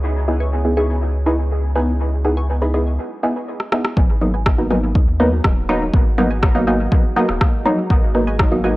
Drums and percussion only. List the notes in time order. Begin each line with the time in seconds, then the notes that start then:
3.60 cross-stick
3.72 cross-stick
3.85 cross-stick
3.97 kick, high tom
4.46 kick, cross-stick
4.71 high tom
4.95 kick
5.44 kick, cross-stick, high tom
5.94 kick
6.18 high tom
6.43 kick, cross-stick
6.92 kick, high tom
7.29 cross-stick
7.41 kick, cross-stick
7.66 high tom
7.90 kick
8.39 kick, cross-stick, high tom